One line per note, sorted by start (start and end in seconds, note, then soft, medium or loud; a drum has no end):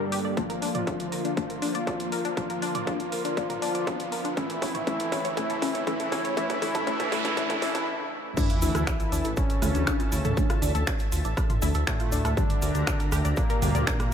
0.00 0.33 G2 medium
0.00 4.33 D3 medium
0.00 0.33 G3 medium
0.00 4.33 A#3 medium
0.00 0.35 A4 medium
0.00 riser medium
0.12 0.18 G4 loud
0.12 open hi-hat loud
0.25 0.35 D5 medium
0.37 1.35 A#2 medium
0.37 1.35 F3 medium
0.37 1.27 F3 medium
0.37 4.33 F3 medium
0.37 1.35 A#3 medium
0.37 0.47 D4 medium
0.37 4.33 F4 medium
0.37 1.27 F4 medium
0.37 kick loud
0.37 closed hi-hat medium
0.50 0.60 A#4 medium
0.50 closed hi-hat medium
0.62 0.72 D4 medium
0.62 open hi-hat loud
0.75 0.85 D5 medium
0.75 closed hi-hat medium
0.75 mid tom medium
0.87 0.99 D4 medium
0.87 kick loud
0.87 closed hi-hat medium
1.00 closed hi-hat medium
1.12 1.22 A#4 medium
1.12 open hi-hat loud
1.25 1.35 D4 medium
1.25 closed hi-hat medium
1.37 2.35 A#2 medium
1.37 2.35 F3 medium
1.37 2.27 F3 medium
1.37 2.35 A#3 medium
1.37 1.47 D4 medium
1.37 2.27 F4 loud
1.37 kick loud
1.37 closed hi-hat medium
1.50 1.60 A#4 medium
1.50 closed hi-hat medium
1.62 1.72 D4 loud
1.62 open hi-hat loud
1.75 1.85 D5 medium
1.75 closed hi-hat medium
1.87 1.99 D4 medium
1.87 kick loud
1.87 closed hi-hat soft
2.00 closed hi-hat medium
2.12 2.22 A#4 medium
2.12 open hi-hat loud
2.25 2.35 D4 medium
2.25 closed hi-hat medium
2.37 3.35 A#2 medium
2.37 3.27 F3 medium
2.37 3.35 F3 medium
2.37 3.35 A#3 medium
2.37 2.47 D4 medium
2.37 3.27 F4 loud
2.37 kick loud
2.37 closed hi-hat medium
2.50 2.60 A#4 medium
2.50 closed hi-hat medium
2.62 2.72 D4 loud
2.62 open hi-hat loud
2.75 2.85 D5 medium
2.75 closed hi-hat medium
2.75 mid tom medium
2.87 2.99 D4 medium
2.87 kick loud
2.87 closed hi-hat medium
3.00 closed hi-hat medium
3.12 3.22 A#4 medium
3.12 open hi-hat loud
3.25 3.35 D4 medium
3.25 closed hi-hat medium
3.37 4.35 A#2 medium
3.37 4.27 F3 medium
3.37 4.35 F3 medium
3.37 4.35 A#3 medium
3.37 3.47 D4 medium
3.37 4.27 F4 loud
3.37 kick loud
3.37 closed hi-hat medium
3.50 3.60 A#4 medium
3.50 closed hi-hat medium
3.50 mid tom medium
3.62 3.72 D4 loud
3.62 open hi-hat loud
3.75 3.85 D5 medium
3.75 closed hi-hat medium
3.87 3.99 D4 medium
3.87 kick loud
3.87 closed hi-hat medium
4.00 closed hi-hat medium
4.12 4.22 A#4 medium
4.12 open hi-hat loud
4.25 4.35 D4 medium
4.25 closed hi-hat medium
4.37 8.33 D2 medium
4.37 4.85 A2 medium
4.37 8.33 C#3 medium
4.37 8.33 E3 medium
4.37 4.85 E3 medium
4.37 8.33 A3 medium
4.37 4.85 A3 medium
4.37 4.47 C#4 medium
4.37 4.85 E4 loud
4.37 8.33 E4 medium
4.37 kick loud
4.37 closed hi-hat medium
4.50 4.60 A4 medium
4.50 closed hi-hat medium
4.62 4.72 C#4 loud
4.62 kick loud
4.62 open hi-hat loud
4.75 4.85 C#5 medium
4.75 closed hi-hat medium
4.75 mid tom medium
4.87 5.35 A2 medium
4.87 5.35 E3 medium
4.87 5.35 A3 medium
4.87 4.97 C#4 medium
4.87 5.35 E4 loud
4.87 kick loud
4.87 closed hi-hat medium
5.00 5.10 A4 medium
5.00 closed hi-hat medium
5.12 5.22 C#4 loud
5.12 kick loud
5.12 open hi-hat loud
5.25 5.35 C#5 medium
5.25 closed hi-hat medium
5.37 5.85 A2 medium
5.37 5.85 E3 medium
5.37 5.85 A3 medium
5.37 5.47 C#4 medium
5.37 5.85 E4 loud
5.37 kick loud
5.37 closed hi-hat medium
5.50 5.60 A4 medium
5.50 closed hi-hat medium
5.62 5.72 C#4 loud
5.62 kick loud
5.62 open hi-hat loud
5.75 5.85 C#5 medium
5.75 closed hi-hat medium
5.87 6.35 A2 medium
5.87 6.35 E3 medium
5.87 6.35 A3 loud
5.87 5.97 C#4 medium
5.87 6.35 E4 loud
5.87 kick loud
5.87 closed hi-hat medium
6.00 6.10 A4 medium
6.00 closed hi-hat medium
6.12 6.22 C#4 loud
6.12 kick loud
6.12 open hi-hat loud
6.25 6.35 C#5 medium
6.25 closed hi-hat medium
6.37 6.60 A2 medium
6.37 6.60 E3 medium
6.37 6.60 A3 medium
6.37 6.47 C#4 medium
6.37 6.60 E4 loud
6.37 kick loud
6.37 closed hi-hat medium
6.37 noise sweep medium
6.50 6.60 A4 medium
6.50 kick medium
6.50 closed hi-hat medium
6.62 6.85 A2 medium
6.62 6.85 E3 medium
6.62 6.85 A3 medium
6.62 6.72 C#4 medium
6.62 6.85 E4 loud
6.62 kick loud
6.62 open hi-hat loud
6.75 6.85 A4 medium
6.75 kick medium
6.75 closed hi-hat medium
6.75 mid tom medium
6.87 7.10 A2 medium
6.87 7.10 E3 medium
6.87 7.10 A3 medium
6.87 6.97 C#4 medium
6.87 7.10 E4 loud
6.87 kick loud
6.87 closed hi-hat medium
7.00 7.10 A4 medium
7.00 kick loud
7.00 closed hi-hat medium
7.12 7.35 A2 medium
7.12 7.35 E3 medium
7.12 7.35 A3 loud
7.12 7.22 C#4 medium
7.12 7.35 E4 loud
7.12 kick loud
7.12 open hi-hat loud
7.25 7.35 A4 medium
7.25 kick medium
7.25 closed hi-hat medium
7.37 7.60 A2 medium
7.37 7.60 E3 medium
7.37 7.60 A3 loud
7.37 7.47 C#4 medium
7.37 7.60 E4 loud
7.37 kick loud
7.37 closed hi-hat medium
7.50 7.60 A4 medium
7.50 kick medium
7.50 closed hi-hat medium
7.50 mid tom medium
7.62 7.85 A2 medium
7.62 7.85 E3 medium
7.62 7.85 A3 medium
7.62 7.72 C#4 medium
7.62 7.85 E4 loud
7.62 kick loud
7.62 open hi-hat loud
7.75 7.85 A4 medium
7.75 kick medium
7.75 closed hi-hat medium
8.37 9.59 D3 medium
8.37 12.33 E3 medium
8.37 9.27 E3 medium
8.37 9.59 A3 medium
8.37 8.49 D4 loud
8.37 9.59 D4 medium
8.37 9.27 E4 loud
8.37 12.33 A4 medium
8.37 14.14 E5 medium
8.37 12.33 A5 medium
8.37 kick loud
8.37 closed hi-hat medium
8.37 crash loud
8.37 sub drop medium
8.37 cabasa medium
8.49 8.56 F4 medium
8.49 closed hi-hat medium
8.49 cabasa soft
8.62 8.71 D2 loud
8.62 8.68 E4 loud
8.62 open hi-hat loud
8.62 cabasa loud
8.75 8.84 D2 medium
8.75 8.85 A4 medium
8.75 cross-stick medium
8.75 closed hi-hat medium
8.75 cabasa soft
8.87 8.97 D4 medium
8.87 finger snap loud
8.87 kick loud
8.87 closed hi-hat medium
8.87 cabasa medium
9.00 9.10 F4 medium
9.00 closed hi-hat medium
9.00 cabasa soft
9.12 9.21 D2 medium
9.12 9.22 D4 loud
9.12 open hi-hat loud
9.12 cabasa medium
9.24 9.34 A1 medium
9.24 9.35 A4 medium
9.24 closed hi-hat medium
9.24 cabasa soft
9.37 10.77 C#3 medium
9.37 10.77 C#4 loud
9.37 9.49 D4 medium
9.37 kick loud
9.37 closed hi-hat medium
9.37 cabasa medium
9.50 closed hi-hat medium
9.50 cabasa soft
9.62 9.71 D2 loud
9.62 10.34 E3 loud
9.62 10.34 A3 medium
9.62 10.34 E4 loud
9.62 9.72 F4 medium
9.62 cross-stick medium
9.62 open hi-hat loud
9.62 cabasa loud
9.75 9.84 D2 medium
9.75 9.85 D4 medium
9.75 closed hi-hat medium
9.75 cabasa soft
9.87 9.99 D4 loud
9.87 finger snap loud
9.87 kick loud
9.87 closed hi-hat medium
9.87 cabasa medium
10.00 10.06 F4 medium
10.00 closed hi-hat medium
10.00 cabasa soft
10.12 10.21 D2 medium
10.12 10.18 E4 loud
10.12 open hi-hat loud
10.12 cabasa medium
10.24 10.34 D2 medium
10.24 10.35 A4 medium
10.24 closed hi-hat medium
10.24 mid tom medium
10.24 cabasa soft
10.37 10.58 D3 medium
10.37 10.58 A3 medium
10.37 10.47 D4 medium
10.37 10.58 D4 medium
10.37 kick loud
10.37 closed hi-hat medium
10.37 cabasa medium
10.50 10.60 F4 medium
10.50 cross-stick medium
10.50 closed hi-hat medium
10.50 cabasa soft
10.62 10.71 D2 loud
10.62 10.72 D4 loud
10.62 open hi-hat loud
10.62 cabasa loud
10.75 10.84 D2 medium
10.75 10.85 A4 medium
10.75 closed hi-hat medium
10.75 cabasa soft
10.87 10.99 D4 medium
10.87 finger snap loud
10.87 kick loud
10.87 closed hi-hat medium
10.87 cabasa medium
10.99 closed hi-hat medium
10.99 cabasa soft
11.12 11.21 D2 medium
11.12 11.22 F4 medium
11.12 open hi-hat loud
11.12 cabasa medium
11.24 11.34 A1 medium
11.24 11.35 D4 medium
11.24 closed hi-hat medium
11.24 cabasa soft
11.37 11.49 D4 loud
11.37 kick loud
11.37 cross-stick medium
11.37 closed hi-hat medium
11.37 cabasa medium
11.50 11.56 F4 medium
11.50 closed hi-hat medium
11.50 mid tom medium
11.50 cabasa soft
11.62 11.71 D2 loud
11.62 12.34 D3 medium
11.62 12.34 A3 medium
11.62 12.34 D4 loud
11.62 11.68 E4 loud
11.62 open hi-hat loud
11.62 cabasa loud
11.74 11.84 D2 medium
11.74 11.85 A4 medium
11.74 closed hi-hat medium
11.74 cabasa soft
11.87 12.33 A2 medium
11.87 12.33 A3 medium
11.87 11.97 D4 medium
11.87 finger snap loud
11.87 kick loud
11.87 closed hi-hat medium
11.87 cabasa medium
12.00 12.10 F4 medium
12.00 closed hi-hat medium
12.00 cabasa soft
12.12 12.21 D2 loud
12.12 12.22 D4 loud
12.12 open hi-hat loud
12.12 cabasa loud
12.25 12.34 D2 medium
12.25 12.35 A4 medium
12.25 cross-stick medium
12.25 closed hi-hat medium
12.25 cabasa soft
12.37 13.59 G2 medium
12.37 13.27 D3 medium
12.37 13.59 D3 medium
12.37 13.59 G3 loud
12.37 12.49 D4 medium
12.37 13.27 D4 loud
12.37 14.14 G4 medium
12.37 14.14 A#4 medium
12.37 14.14 A#5 medium
12.37 kick loud
12.37 closed hi-hat medium
12.37 cabasa medium
12.50 closed hi-hat medium
12.50 cabasa soft
12.62 12.71 D2 loud
12.62 12.72 A#4 medium
12.62 open hi-hat loud
12.62 cabasa loud
12.75 12.84 D2 medium
12.75 12.85 D4 medium
12.75 closed hi-hat medium
12.75 cabasa soft
12.87 12.99 D4 loud
12.87 finger snap loud
12.87 kick loud
12.87 closed hi-hat medium
12.87 cabasa medium
13.00 13.06 A#4 medium
13.00 closed hi-hat medium
13.00 cabasa soft
13.12 13.21 D2 loud
13.12 13.18 G4 loud
13.12 cross-stick medium
13.12 open hi-hat loud
13.12 cabasa medium
13.25 13.34 D2 medium
13.25 13.35 D5 medium
13.25 closed hi-hat medium
13.25 cabasa soft
13.36 14.14 A#2 medium
13.36 14.14 A#3 loud
13.36 13.47 D4 medium
13.36 kick loud
13.36 closed hi-hat medium
13.36 cabasa medium
13.50 13.60 A#4 medium
13.50 closed hi-hat medium
13.50 cabasa soft
13.62 13.71 D2 loud
13.62 14.14 G2 medium
13.62 14.14 D3 medium
13.62 14.14 G3 loud
13.62 13.72 D4 loud
13.62 open hi-hat loud
13.62 cabasa loud
13.75 13.84 D2 medium
13.75 13.85 D5 medium
13.75 closed hi-hat medium
13.75 cabasa soft
13.87 13.99 D4 medium
13.87 finger snap loud
13.87 kick loud
13.87 closed hi-hat medium
13.87 cabasa medium
14.00 cross-stick medium
14.00 closed hi-hat medium
14.00 cabasa soft